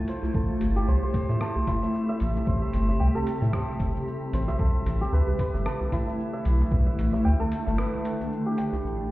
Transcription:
0.00 2.43 A3 medium
0.00 0.31 E4 medium
0.00 0.91 E4 medium
0.00 0.31 F4 medium
0.00 0.34 A4 loud
0.00 1.29 E5 medium
0.00 0.83 G5 medium
0.08 0.87 C5 medium
0.08 closed hi-hat medium
0.08 djembe tone soft
0.08 shaker medium
0.23 djembe slap medium
0.23 djembe bass medium
0.23 shaker soft
0.34 0.53 A1 medium
0.34 4.56 C3 medium
0.34 4.56 G4 medium
0.34 3.15 A4 medium
0.34 kick loud
0.34 shaker soft
0.61 0.79 G1 medium
0.61 closed hi-hat medium
0.61 djembe tone soft
0.61 djembe bass medium
0.61 shaker medium
0.76 3.90 G4 medium
0.76 djembe slap soft
0.76 shaker soft
0.88 0.97 C2 medium
0.88 1.02 C5 medium
0.88 shaker soft
1.03 1.14 C5 medium
1.03 djembe tone medium
1.03 djembe bass medium
1.14 2.47 C5 medium
1.14 kick loud
1.14 closed hi-hat medium
1.14 shaker medium
1.29 1.37 A2 medium
1.29 1.82 E5 medium
1.29 djembe slap medium
1.29 shaker soft
1.41 3.35 A5 medium
1.41 cross-stick medium
1.41 shaker soft
1.56 djembe bass loud
1.67 1.77 G1 medium
1.67 5.16 E4 loud
1.67 kick medium
1.67 closed hi-hat medium
1.67 djembe slap medium
1.67 djembe tone soft
1.67 shaker medium
1.83 2.09 E5 medium
1.83 shaker soft
1.95 shaker soft
2.09 2.61 E5 loud
2.20 2.39 A1 medium
2.20 closed hi-hat medium
2.20 shaker medium
2.36 djembe slap medium
2.36 shaker soft
2.46 2.65 A1 loud
2.46 4.57 G3 medium
2.46 3.53 C5 medium
2.46 kick loud
2.46 shaker soft
2.62 2.88 E5 medium
2.73 2.92 G1 medium
2.73 closed hi-hat medium
2.73 djembe tone soft
2.73 djembe bass medium
2.73 shaker medium
2.88 3.42 E5 medium
2.88 djembe slap soft
2.88 shaker soft
3.00 3.10 C2 medium
3.00 5.07 G5 medium
3.00 shaker soft
3.15 4.59 A4 loud
3.15 djembe tone medium
3.15 djembe bass medium
3.27 closed hi-hat medium
3.27 shaker medium
3.42 3.49 A2 medium
3.42 4.48 E5 medium
3.42 djembe slap medium
3.42 shaker soft
3.53 4.33 C5 medium
3.53 kick loud
3.53 cross-stick medium
3.53 shaker soft
3.68 djembe slap medium
3.68 djembe tone medium
3.80 3.89 G1 loud
3.80 kick loud
3.80 closed hi-hat medium
3.80 shaker medium
3.94 djembe tone medium
3.94 shaker soft
4.08 shaker soft
4.33 4.51 A1 medium
4.33 5.19 C5 medium
4.33 closed hi-hat medium
4.33 djembe tone soft
4.33 shaker medium
4.48 5.54 E5 loud
4.48 djembe slap medium
4.48 djembe bass medium
4.48 shaker soft
4.59 4.78 B1 loud
4.59 8.80 D3 medium
4.59 8.80 A3 medium
4.59 6.70 E4 medium
4.59 7.39 A4 medium
4.59 kick loud
4.59 shaker soft
4.86 5.04 A1 medium
4.86 closed hi-hat medium
4.86 djembe tone soft
4.86 djembe bass medium
4.86 shaker medium
5.01 8.15 G4 medium
5.01 djembe slap medium
5.01 shaker soft
5.12 5.22 D2 medium
5.12 5.27 B4 medium
5.12 shaker soft
5.27 5.39 B4 medium
5.27 djembe tone medium
5.27 djembe bass medium
5.39 6.71 B4 medium
5.39 kick medium
5.39 closed hi-hat loud
5.39 shaker medium
5.54 5.61 G1 medium
5.54 6.07 E5 medium
5.54 djembe slap medium
5.54 shaker soft
5.66 7.59 A5 medium
5.66 cross-stick medium
5.66 shaker soft
5.81 djembe bass medium
5.92 6.02 A1 loud
5.92 9.11 E4 loud
5.92 kick medium
5.92 closed hi-hat medium
5.92 djembe slap medium
5.92 djembe tone soft
5.92 shaker medium
6.07 6.33 E5 medium
6.07 shaker soft
6.20 shaker soft
6.33 6.86 E5 loud
6.45 6.64 B1 medium
6.45 closed hi-hat medium
6.45 shaker medium
6.61 djembe slap medium
6.61 shaker soft
6.72 6.90 B1 medium
6.72 8.82 D4 medium
6.72 7.77 B4 medium
6.72 kick loud
6.72 shaker soft
6.86 7.13 E5 medium
6.99 7.17 A1 medium
6.99 closed hi-hat medium
6.99 djembe tone soft
6.99 djembe bass medium
6.99 shaker medium
7.13 7.66 E5 medium
7.13 djembe slap medium
7.13 shaker soft
7.25 7.35 D2 medium
7.25 8.57 G5 medium
7.25 shaker soft
7.40 9.11 A4 loud
7.40 djembe tone medium
7.40 djembe bass medium
7.52 closed hi-hat medium
7.52 shaker medium
7.66 7.78 G1 medium
7.66 9.11 E5 medium
7.66 djembe slap medium
7.66 shaker soft
7.78 9.11 B4 medium
7.78 cross-stick medium
7.78 shaker soft
7.94 djembe slap medium
7.94 djembe tone medium
8.05 closed hi-hat medium
8.05 shaker medium
8.21 djembe tone medium
8.21 shaker soft
8.32 shaker soft
8.46 9.11 G4 medium
8.58 9.11 G5 medium
8.58 closed hi-hat medium
8.58 djembe tone soft
8.58 shaker medium
8.73 djembe slap medium
8.73 djembe bass medium
8.73 shaker soft
8.84 9.11 A1 medium
8.84 shaker soft

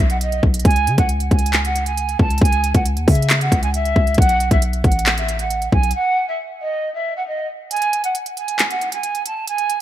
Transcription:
0.00 0.41 B1 loud
0.10 0.20 F#5 medium
0.10 closed hi-hat medium
0.21 0.40 D#5 medium
0.21 closed hi-hat medium
0.32 closed hi-hat medium
0.43 0.64 B1 loud
0.43 kick medium
0.54 closed hi-hat medium
0.59 closed hi-hat medium
0.65 0.89 C#2 loud
0.65 0.96 G#5 loud
0.65 kick loud
0.65 closed hi-hat medium
0.71 closed hi-hat soft
0.76 closed hi-hat medium
0.87 0.98 C#3 loud
0.87 closed hi-hat medium
0.98 1.30 C#2 loud
0.98 1.08 F#5 medium
0.98 kick medium
0.98 closed hi-hat medium
1.09 closed hi-hat medium
1.20 closed hi-hat medium
1.31 2.16 C#2 loud
1.31 1.62 G#5 medium
1.31 kick loud
1.31 closed hi-hat soft
1.39 closed hi-hat medium
1.46 closed hi-hat medium
1.53 clap loud
1.53 closed hi-hat medium
1.64 1.84 F#5 medium
1.64 closed hi-hat medium
1.76 closed hi-hat medium
1.86 2.17 G#5 medium
1.86 closed hi-hat medium
1.98 closed hi-hat medium
2.09 closed hi-hat medium
2.19 2.41 C#2 loud
2.19 2.39 A5 medium
2.19 kick medium
2.30 closed hi-hat soft
2.38 2.73 C#2 loud
2.38 2.73 G#5 loud
2.38 kick loud
2.38 closed hi-hat medium
2.45 closed hi-hat medium
2.52 closed hi-hat medium
2.64 closed hi-hat medium
2.74 2.98 C#2 loud
2.74 2.84 F#5 medium
2.74 kick medium
2.74 closed hi-hat medium
2.86 closed hi-hat medium
2.97 3.07 D#2 loud
2.97 closed hi-hat medium
3.08 3.50 C#3 loud
3.08 3.39 E5 medium
3.08 kick loud
3.08 closed hi-hat soft
3.08 open hi-hat medium
3.15 closed hi-hat medium
3.22 closed hi-hat medium
3.30 clap loud
3.30 closed hi-hat medium
3.41 3.60 F#5 medium
3.41 closed hi-hat medium
3.52 3.94 C#2 loud
3.52 kick loud
3.52 closed hi-hat medium
3.63 3.72 G#5 medium
3.63 closed hi-hat medium
3.74 4.15 E5 loud
3.74 closed hi-hat medium
3.85 closed hi-hat medium
3.96 4.17 C#2 loud
3.96 kick medium
4.07 closed hi-hat soft
4.14 4.50 B1 loud
4.14 4.49 F#5 loud
4.14 kick loud
4.14 closed hi-hat medium
4.22 closed hi-hat medium
4.29 closed hi-hat medium
4.40 closed hi-hat medium
4.51 4.83 B1 loud
4.51 4.61 E5 medium
4.51 kick medium
4.51 closed hi-hat medium
4.62 closed hi-hat medium
4.73 closed hi-hat medium
4.84 5.69 A1 loud
4.84 5.15 F#5 medium
4.84 kick loud
4.84 closed hi-hat soft
4.92 closed hi-hat medium
4.99 closed hi-hat medium
5.06 clap loud
5.06 closed hi-hat medium
5.17 5.36 E5 medium
5.17 closed hi-hat medium
5.29 closed hi-hat medium
5.39 5.71 F#5 medium
5.39 closed hi-hat medium
5.50 closed hi-hat medium
5.62 closed hi-hat medium
5.72 5.94 B1 loud
5.72 5.91 G#5 medium
5.72 kick medium
5.83 closed hi-hat soft
5.91 6.26 F#5 loud
5.91 closed hi-hat medium
6.28 6.37 E5 medium
6.61 6.92 D#5 medium
6.94 7.13 E5 medium
7.16 7.26 F#5 medium
7.27 7.46 D#5 medium
7.71 8.02 G#5 loud
7.71 closed hi-hat medium
7.76 closed hi-hat soft
7.82 closed hi-hat medium
7.93 closed hi-hat medium
8.04 8.14 F#5 medium
8.04 closed hi-hat medium
8.15 closed hi-hat medium
8.26 closed hi-hat medium
8.37 8.68 G#5 medium
8.37 closed hi-hat medium
8.48 closed hi-hat medium
8.59 clap loud
8.59 closed hi-hat medium
8.70 8.89 F#5 medium
8.70 closed hi-hat medium
8.81 closed hi-hat medium
8.92 9.23 G#5 medium
8.92 closed hi-hat medium
9.03 closed hi-hat medium
9.15 closed hi-hat medium
9.26 9.45 A5 medium
9.26 closed hi-hat medium
9.47 9.79 G#5 loud
9.47 closed hi-hat medium
9.58 closed hi-hat medium
9.70 closed hi-hat medium

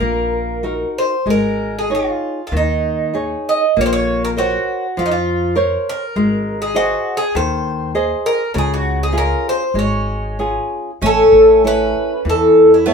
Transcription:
0.00 0.82 A#1 medium
0.00 0.62 A#3 medium
0.00 0.98 A#4 medium
0.63 1.14 D#4 soft
0.63 1.15 F#4 soft
0.63 1.15 A#4 soft
0.98 1.26 C5 medium
1.26 2.08 G#1 medium
1.26 1.88 G#3 soft
1.30 1.77 A#4 medium
1.79 1.93 G#4 medium
1.90 2.40 D#4 soft
1.90 2.40 G#4 soft
1.90 2.40 C#5 soft
1.95 2.46 F4 medium
2.47 2.53 F4 medium
2.52 3.33 D#2 medium
2.52 3.13 D#3 medium
2.57 3.13 D#4 medium
3.14 3.64 D#4 soft
3.14 3.64 G#4 soft
3.14 3.64 C#5 medium
3.49 3.76 D#5 medium
3.77 4.55 A#1 medium
3.77 4.36 A#3 medium
3.81 3.85 C#5 medium
3.86 3.92 C5 medium
3.93 4.24 C#5 medium
4.25 4.30 A#4 medium
4.37 4.98 F#4 medium
4.37 4.85 A#4 soft
4.37 4.85 C5 soft
4.37 4.85 C#5 soft
4.97 5.75 F2 medium
4.97 5.54 F3 medium
4.97 5.04 F4 medium
5.06 5.11 D#4 medium
5.11 5.54 F4 medium
5.55 6.03 A#4 medium
5.55 6.03 C5 soft
5.55 6.04 C#5 medium
5.89 6.61 A#4 medium
6.16 6.92 G#1 medium
6.16 6.73 G#3 medium
6.62 6.76 G#4 medium
6.74 7.16 F#4 medium
6.74 7.22 G#4 soft
6.74 7.22 C5 soft
6.74 7.23 D#5 medium
7.17 7.36 G#4 medium
7.35 8.12 D#2 medium
7.35 7.92 D#3 medium
7.35 7.91 C5 medium
7.95 8.42 G#4 medium
7.95 8.42 C5 medium
7.95 8.42 D#5 medium
8.26 8.51 A#4 medium
8.54 9.33 C#2 medium
8.54 9.12 C#3 medium
8.54 8.56 A#4 medium
8.58 8.71 G#4 medium
8.74 8.99 F#4 medium
9.03 9.16 G#4 medium
9.12 9.61 C#4 soft
9.12 9.62 F4 soft
9.12 9.62 G#4 medium
9.18 9.46 A#4 medium
9.49 9.78 C5 medium
9.74 10.57 G#1 medium
9.74 10.37 G#3 medium
9.79 10.69 C#5 medium
10.39 10.90 C#4 soft
10.39 10.90 F4 soft
10.39 10.90 G#4 soft
11.01 11.22 A1 medium
11.01 11.62 A3 medium
11.01 12.92 C#4 medium
11.06 11.62 A4 medium
11.32 11.93 A1 medium
11.64 12.13 E4 soft
11.64 12.14 A4 soft
11.64 12.23 B4 medium
11.64 12.14 C#5 soft
12.25 12.94 E2 medium
12.25 12.85 E3 medium
12.29 12.75 A4 medium
12.74 12.94 E4 medium
12.86 12.94 B3 medium
12.86 12.94 E4 medium
12.86 12.94 A4 soft
12.86 12.94 C#5 medium

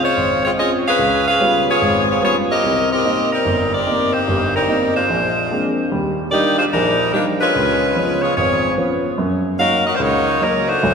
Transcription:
0.04 0.41 G#3 medium
0.04 0.41 F4 medium
0.04 0.41 C5 medium
0.04 0.41 C#5 medium
0.17 0.52 G#1 medium
0.45 0.51 G#3 medium
0.45 0.51 C4 medium
0.45 0.51 F4 medium
0.45 0.51 C#5 medium
0.57 0.86 C4 soft
0.57 0.71 C4 medium
0.57 0.86 C#4 soft
0.57 0.86 F4 soft
0.57 0.71 F4 medium
0.57 0.71 G#4 medium
0.57 0.71 D#5 medium
0.87 1.24 C#4 medium
0.87 1.24 G#4 medium
0.87 1.24 B4 medium
0.87 1.24 F5 medium
0.99 1.34 C#2 medium
1.28 1.65 C#4 medium
1.28 1.65 G#4 medium
1.28 1.65 B4 medium
1.28 1.65 F5 loud
1.40 1.68 G3 soft
1.40 1.68 B3 soft
1.40 1.68 C#4 soft
1.40 1.68 F4 soft
1.69 2.06 B3 medium
1.69 2.06 F4 medium
1.69 2.06 G#4 medium
1.69 2.06 C#5 medium
1.81 2.16 G#1 medium
1.81 2.16 G#2 medium
2.10 2.22 B3 medium
2.10 2.22 F4 medium
2.10 2.22 G#4 medium
2.10 2.22 C#5 medium
2.21 2.50 G3 soft
2.21 2.50 B3 soft
2.21 2.36 B3 medium
2.21 2.50 C#4 soft
2.21 2.50 F4 soft
2.21 2.36 F4 medium
2.21 2.36 G#4 medium
2.21 2.36 C#5 medium
2.51 2.88 C4 medium
2.51 2.88 G4 medium
2.51 2.88 A#4 medium
2.51 2.88 D#5 medium
2.63 2.98 C2 medium
2.92 3.29 C4 medium
2.92 3.29 G4 medium
2.92 3.29 A#4 medium
2.92 3.29 D#5 medium
3.05 3.32 A#3 soft
3.05 3.32 C4 soft
3.05 3.33 D#4 medium
3.33 3.70 G3 medium
3.33 3.70 C4 medium
3.33 3.70 D#4 medium
3.33 3.70 A#4 medium
3.46 3.80 G1 medium
3.73 4.13 C4 medium
3.73 4.12 G4 medium
3.73 4.13 A#4 medium
3.73 4.13 D5 medium
3.87 4.14 A#3 soft
3.87 4.14 C4 soft
3.87 4.15 D#4 soft
4.13 4.54 A#3 medium
4.13 4.54 D#4 medium
4.13 4.54 G4 medium
4.13 4.54 C5 medium
4.28 4.63 G1 medium
4.28 4.63 G2 medium
4.55 4.93 G3 medium
4.55 4.93 C4 medium
4.55 4.93 D#4 medium
4.55 4.93 A#4 medium
4.68 4.96 A#3 soft
4.68 4.96 C4 soft
4.68 4.96 D#4 medium
4.96 5.73 G#3 medium
4.96 5.73 D4 medium
4.96 5.73 F4 medium
4.96 5.73 C5 medium
5.10 5.45 A#1 medium
5.51 5.79 G#3 soft
5.51 5.79 A#3 soft
5.51 5.79 C4 soft
5.51 5.79 D4 soft
5.92 6.27 D#2 medium
5.92 6.27 G3 medium
6.32 6.60 G3 soft
6.32 6.56 A#3 medium
6.32 6.60 D4 soft
6.32 6.57 D#4 medium
6.32 6.60 D#4 medium
6.32 6.57 G4 medium
6.32 6.56 D5 loud
6.58 6.65 G#3 medium
6.58 6.64 D4 medium
6.58 6.65 F4 medium
6.58 6.65 C5 medium
6.72 7.08 A#1 medium
6.72 7.10 G3 medium
6.72 7.10 D4 medium
6.72 7.10 D#4 medium
6.72 7.10 A#4 medium
7.14 7.26 D#3 medium
7.14 7.42 G3 soft
7.14 7.26 A#3 medium
7.14 7.26 D4 medium
7.14 7.42 D4 soft
7.14 7.42 D#4 soft
7.14 7.26 G4 medium
7.41 8.18 G#3 medium
7.41 8.18 C#4 medium
7.41 8.19 F4 medium
7.41 8.18 B4 medium
7.55 7.90 C#2 medium
7.96 8.24 F3 soft
7.96 8.24 B3 soft
7.96 8.24 C#4 medium
8.22 8.35 B3 medium
8.22 8.35 F4 medium
8.22 8.35 G#4 medium
8.22 8.35 C#5 medium
8.36 8.72 G#1 medium
8.36 8.74 B3 medium
8.36 8.74 F4 medium
8.36 8.74 G#4 medium
8.36 8.74 C#5 medium
8.78 9.06 F3 soft
8.78 9.06 B3 soft
8.78 9.06 C#4 soft
9.18 9.53 F#2 medium
9.59 9.87 F#3 soft
9.59 9.87 A#3 soft
9.59 9.84 C#4 medium
9.59 9.87 D#4 medium
9.59 9.84 F#4 medium
9.59 9.84 A#4 medium
9.59 9.84 F5 loud
9.87 9.95 C#4 medium
9.87 9.95 F#4 medium
9.87 9.95 A#4 medium
9.87 9.95 D#5 medium
9.96 10.35 C#2 medium
9.96 10.00 C5 medium
10.01 10.41 A#3 medium
10.01 10.41 D#4 medium
10.01 10.41 F#4 medium
10.01 10.41 C#5 loud
10.41 10.69 F#3 soft
10.41 10.68 F#3 medium
10.41 10.69 A#3 soft
10.41 10.68 C#4 medium
10.41 10.70 D#4 soft
10.41 10.68 D#4 medium
10.41 10.68 A#4 medium
10.69 10.94 A3 medium
10.69 10.94 D4 medium
10.69 10.94 F#4 medium
10.69 10.94 C5 loud
10.83 10.94 D2 medium
10.83 10.94 F#3 medium

